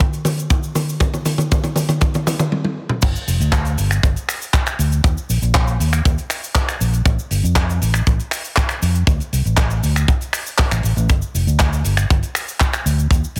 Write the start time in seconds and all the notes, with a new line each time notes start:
0.00 kick, cabasa
0.13 closed hi-hat, cabasa
0.25 open hi-hat, mid tom, cabasa
0.37 closed hi-hat, cabasa
0.50 kick, closed hi-hat, mid tom, cabasa
0.63 cabasa
0.75 open hi-hat, mid tom, cabasa
0.89 cabasa
1.00 kick, closed hi-hat, mid tom, cabasa
1.14 mid tom, cabasa
1.25 open hi-hat, mid tom, cabasa
1.38 closed hi-hat, mid tom, cabasa
1.51 kick, closed hi-hat, mid tom, cabasa
1.64 closed hi-hat, mid tom, cabasa
1.76 open hi-hat, mid tom, cabasa
1.89 closed hi-hat, mid tom, cabasa
2.01 kick, closed hi-hat, mid tom, cabasa
2.14 closed hi-hat, mid tom, cabasa
2.27 open hi-hat, mid tom, cabasa
2.39 closed hi-hat, mid tom, cabasa
2.52 high tom
2.65 high tom
2.89 mid tom
3.02 G1, kick, closed hi-hat, crash, cabasa
3.16 cabasa
3.28 F1, open hi-hat, cabasa
3.40 D2, closed hi-hat, cabasa
3.52 kick, clap, closed hi-hat, cabasa
3.65 closed hi-hat, cabasa
3.78 G1, open hi-hat, cabasa
3.91 finger snap, closed hi-hat, cabasa
4.03 G1, kick, closed hi-hat, cabasa
4.16 closed hi-hat, cabasa
4.29 finger snap, open hi-hat, cabasa
4.42 cabasa
4.53 kick, clap, closed hi-hat, cabasa
4.66 finger snap, closed hi-hat, cabasa
4.79 D2, open hi-hat, cabasa
4.92 closed hi-hat, cabasa
5.04 D#2, kick, closed hi-hat, cabasa
5.18 cabasa
5.29 A#1, open hi-hat, cabasa
5.42 A#1, closed hi-hat, cabasa
5.55 kick, clap, closed hi-hat, cabasa
5.67 closed hi-hat, cabasa
5.80 D#2, open hi-hat, cabasa
5.93 finger snap, closed hi-hat, cabasa
6.05 D#2, kick, closed hi-hat, cabasa
6.18 closed hi-hat, cabasa
6.30 finger snap, open hi-hat, cabasa
6.44 cabasa
6.55 kick, clap, closed hi-hat, cabasa
6.69 finger snap, closed hi-hat, cabasa
6.81 A#1, open hi-hat, cabasa
6.93 closed hi-hat, cabasa
7.05 A1, kick, closed hi-hat, cabasa
7.19 cabasa
7.31 G1, open hi-hat, cabasa
7.43 F2, closed hi-hat, cabasa
7.55 kick, clap, closed hi-hat, cabasa
7.69 closed hi-hat, cabasa
7.81 A1, open hi-hat, cabasa
7.94 finger snap, closed hi-hat, cabasa
8.07 A1, kick, closed hi-hat, cabasa
8.19 closed hi-hat, cabasa
8.31 finger snap, open hi-hat, cabasa
8.45 cabasa
8.56 kick, clap, closed hi-hat, cabasa
8.69 finger snap, closed hi-hat, cabasa
8.82 F2, open hi-hat, cabasa
8.95 closed hi-hat, cabasa
9.07 D2, kick, closed hi-hat, cabasa
9.20 closed hi-hat, cabasa
9.33 C2, open hi-hat, cabasa
9.45 A1, closed hi-hat, cabasa
9.57 kick, clap, closed hi-hat, cabasa
9.70 closed hi-hat, cabasa
9.83 D2, open hi-hat, cabasa
9.96 finger snap, closed hi-hat, cabasa
10.08 kick, closed hi-hat, cabasa
10.21 closed hi-hat, cabasa
10.33 finger snap, open hi-hat, cabasa
10.47 cabasa
10.58 kick, clap, cabasa
10.71 A1, finger snap, closed hi-hat, cabasa
10.83 A1, open hi-hat, cabasa
10.96 A1, closed hi-hat, cabasa
11.09 G1, kick, closed hi-hat, cabasa
11.22 cabasa
11.34 F1, open hi-hat, cabasa
11.47 D2, closed hi-hat, cabasa
11.59 kick, clap, closed hi-hat, cabasa
11.73 closed hi-hat, cabasa
11.84 G1, open hi-hat, cabasa
11.97 finger snap, closed hi-hat, cabasa
12.10 G1, kick, closed hi-hat, cabasa
12.23 closed hi-hat, cabasa
12.35 finger snap, open hi-hat, cabasa
12.48 cabasa
12.60 kick, clap, closed hi-hat, cabasa
12.73 finger snap, closed hi-hat, cabasa
12.86 D2, open hi-hat, cabasa
12.98 closed hi-hat, cabasa
13.11 D#2, kick, closed hi-hat, cabasa
13.24 cabasa
13.35 A#1, open hi-hat